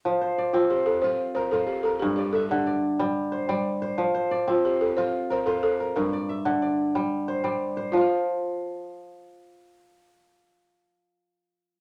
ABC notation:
X:1
M:12/8
L:1/8
Q:3/8=122
K:F
V:1 name="Kora"
z c d2 c3 z B c2 B- | B d e2 d3 z c d2 c- | c c d2 c3 z B c2 B- | B d e2 d3 z c d2 c- |
c z8 z3 | z12 |]
V:2 name="Kora" clef=bass
F,2 z C2 z F2 z F2 z | G,,2 z D,2 z G,2 z G,2 z | F,2 z C2 z F2 z F2 z | G,,2 z D,2 z G,2 z G,2 z |
[F,Ff]12- | [F,Ff]12 |]
V:3 name="Balafon"
z3 F G A c2 c A G A | G G A G4 z4 z | z3 F G A c2 c A A2 | B8- B2 z2 |
F12- | F12 |]